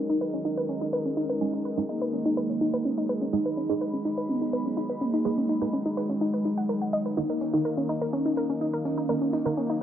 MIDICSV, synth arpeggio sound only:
0, 0, Header, 1, 2, 480
1, 0, Start_track
1, 0, Tempo, 480000
1, 1412, Time_signature, 4, 2, 24, 8
1, 9827, End_track
2, 0, Start_track
2, 0, Title_t, "Synth arpeggio sound"
2, 0, Program_c, 0, 84
2, 95, Note_on_c, 0, 63, 95
2, 171, Note_off_c, 0, 63, 0
2, 211, Note_on_c, 0, 71, 98
2, 244, Note_off_c, 0, 71, 0
2, 335, Note_on_c, 0, 61, 76
2, 386, Note_off_c, 0, 61, 0
2, 450, Note_on_c, 0, 63, 97
2, 532, Note_off_c, 0, 63, 0
2, 574, Note_on_c, 0, 71, 99
2, 606, Note_off_c, 0, 71, 0
2, 691, Note_on_c, 0, 61, 73
2, 745, Note_off_c, 0, 61, 0
2, 814, Note_on_c, 0, 63, 97
2, 891, Note_off_c, 0, 63, 0
2, 930, Note_on_c, 0, 71, 99
2, 964, Note_off_c, 0, 71, 0
2, 1054, Note_on_c, 0, 61, 74
2, 1106, Note_off_c, 0, 61, 0
2, 1170, Note_on_c, 0, 63, 96
2, 1252, Note_off_c, 0, 63, 0
2, 1295, Note_on_c, 0, 71, 94
2, 1326, Note_off_c, 0, 71, 0
2, 1410, Note_on_c, 0, 61, 82
2, 1465, Note_off_c, 0, 61, 0
2, 1534, Note_on_c, 0, 63, 99
2, 1611, Note_off_c, 0, 63, 0
2, 1651, Note_on_c, 0, 71, 99
2, 1684, Note_off_c, 0, 71, 0
2, 1774, Note_on_c, 0, 61, 71
2, 1826, Note_off_c, 0, 61, 0
2, 1891, Note_on_c, 0, 63, 98
2, 1973, Note_off_c, 0, 63, 0
2, 2015, Note_on_c, 0, 71, 97
2, 2046, Note_off_c, 0, 71, 0
2, 2131, Note_on_c, 0, 61, 76
2, 2186, Note_off_c, 0, 61, 0
2, 2255, Note_on_c, 0, 63, 101
2, 2332, Note_off_c, 0, 63, 0
2, 2371, Note_on_c, 0, 71, 100
2, 2404, Note_off_c, 0, 71, 0
2, 2496, Note_on_c, 0, 61, 73
2, 2547, Note_off_c, 0, 61, 0
2, 2611, Note_on_c, 0, 63, 97
2, 2693, Note_off_c, 0, 63, 0
2, 2736, Note_on_c, 0, 71, 99
2, 2766, Note_off_c, 0, 71, 0
2, 2852, Note_on_c, 0, 61, 81
2, 2906, Note_off_c, 0, 61, 0
2, 2977, Note_on_c, 0, 63, 99
2, 3052, Note_off_c, 0, 63, 0
2, 3092, Note_on_c, 0, 71, 97
2, 3125, Note_off_c, 0, 71, 0
2, 3216, Note_on_c, 0, 61, 73
2, 3267, Note_off_c, 0, 61, 0
2, 3332, Note_on_c, 0, 63, 100
2, 3413, Note_off_c, 0, 63, 0
2, 3456, Note_on_c, 0, 71, 99
2, 3487, Note_off_c, 0, 71, 0
2, 3572, Note_on_c, 0, 61, 75
2, 3626, Note_off_c, 0, 61, 0
2, 3696, Note_on_c, 0, 63, 98
2, 3772, Note_off_c, 0, 63, 0
2, 3812, Note_on_c, 0, 71, 100
2, 3844, Note_off_c, 0, 71, 0
2, 3935, Note_on_c, 0, 61, 73
2, 3986, Note_off_c, 0, 61, 0
2, 4051, Note_on_c, 0, 63, 98
2, 4133, Note_off_c, 0, 63, 0
2, 4175, Note_on_c, 0, 71, 100
2, 4206, Note_off_c, 0, 71, 0
2, 4292, Note_on_c, 0, 61, 79
2, 4346, Note_off_c, 0, 61, 0
2, 4416, Note_on_c, 0, 63, 98
2, 4492, Note_off_c, 0, 63, 0
2, 4532, Note_on_c, 0, 71, 101
2, 4564, Note_off_c, 0, 71, 0
2, 4656, Note_on_c, 0, 61, 74
2, 4706, Note_off_c, 0, 61, 0
2, 4771, Note_on_c, 0, 63, 100
2, 4853, Note_off_c, 0, 63, 0
2, 4895, Note_on_c, 0, 71, 99
2, 4926, Note_off_c, 0, 71, 0
2, 5011, Note_on_c, 0, 61, 75
2, 5066, Note_off_c, 0, 61, 0
2, 5136, Note_on_c, 0, 63, 95
2, 5212, Note_off_c, 0, 63, 0
2, 5251, Note_on_c, 0, 71, 97
2, 5284, Note_off_c, 0, 71, 0
2, 5375, Note_on_c, 0, 61, 76
2, 5426, Note_off_c, 0, 61, 0
2, 5491, Note_on_c, 0, 63, 100
2, 5573, Note_off_c, 0, 63, 0
2, 5615, Note_on_c, 0, 71, 97
2, 5646, Note_off_c, 0, 71, 0
2, 5732, Note_on_c, 0, 61, 79
2, 5786, Note_off_c, 0, 61, 0
2, 5856, Note_on_c, 0, 63, 98
2, 5932, Note_off_c, 0, 63, 0
2, 5972, Note_on_c, 0, 71, 101
2, 6004, Note_off_c, 0, 71, 0
2, 6095, Note_on_c, 0, 61, 78
2, 6146, Note_off_c, 0, 61, 0
2, 6211, Note_on_c, 0, 63, 99
2, 6293, Note_off_c, 0, 63, 0
2, 6335, Note_on_c, 0, 71, 99
2, 6366, Note_off_c, 0, 71, 0
2, 6451, Note_on_c, 0, 63, 76
2, 6484, Note_off_c, 0, 63, 0
2, 6576, Note_on_c, 0, 78, 96
2, 6626, Note_off_c, 0, 78, 0
2, 6692, Note_on_c, 0, 70, 100
2, 6724, Note_off_c, 0, 70, 0
2, 6815, Note_on_c, 0, 78, 75
2, 6892, Note_off_c, 0, 78, 0
2, 6931, Note_on_c, 0, 75, 98
2, 6986, Note_off_c, 0, 75, 0
2, 7056, Note_on_c, 0, 71, 73
2, 7132, Note_off_c, 0, 71, 0
2, 7171, Note_on_c, 0, 63, 98
2, 7253, Note_off_c, 0, 63, 0
2, 7296, Note_on_c, 0, 70, 101
2, 7326, Note_off_c, 0, 70, 0
2, 7410, Note_on_c, 0, 61, 74
2, 7465, Note_off_c, 0, 61, 0
2, 7535, Note_on_c, 0, 63, 96
2, 7611, Note_off_c, 0, 63, 0
2, 7650, Note_on_c, 0, 70, 98
2, 7683, Note_off_c, 0, 70, 0
2, 7774, Note_on_c, 0, 61, 75
2, 7826, Note_off_c, 0, 61, 0
2, 7891, Note_on_c, 0, 63, 99
2, 7973, Note_off_c, 0, 63, 0
2, 8015, Note_on_c, 0, 70, 100
2, 8046, Note_off_c, 0, 70, 0
2, 8131, Note_on_c, 0, 61, 83
2, 8186, Note_off_c, 0, 61, 0
2, 8256, Note_on_c, 0, 63, 101
2, 8332, Note_off_c, 0, 63, 0
2, 8371, Note_on_c, 0, 70, 101
2, 8404, Note_off_c, 0, 70, 0
2, 8496, Note_on_c, 0, 61, 73
2, 8547, Note_off_c, 0, 61, 0
2, 8611, Note_on_c, 0, 63, 100
2, 8693, Note_off_c, 0, 63, 0
2, 8735, Note_on_c, 0, 70, 100
2, 8766, Note_off_c, 0, 70, 0
2, 8852, Note_on_c, 0, 61, 73
2, 8906, Note_off_c, 0, 61, 0
2, 8976, Note_on_c, 0, 63, 94
2, 9052, Note_off_c, 0, 63, 0
2, 9091, Note_on_c, 0, 70, 98
2, 9124, Note_off_c, 0, 70, 0
2, 9215, Note_on_c, 0, 61, 73
2, 9266, Note_off_c, 0, 61, 0
2, 9332, Note_on_c, 0, 63, 99
2, 9413, Note_off_c, 0, 63, 0
2, 9457, Note_on_c, 0, 70, 98
2, 9487, Note_off_c, 0, 70, 0
2, 9572, Note_on_c, 0, 61, 81
2, 9626, Note_off_c, 0, 61, 0
2, 9696, Note_on_c, 0, 63, 98
2, 9772, Note_off_c, 0, 63, 0
2, 9827, End_track
0, 0, End_of_file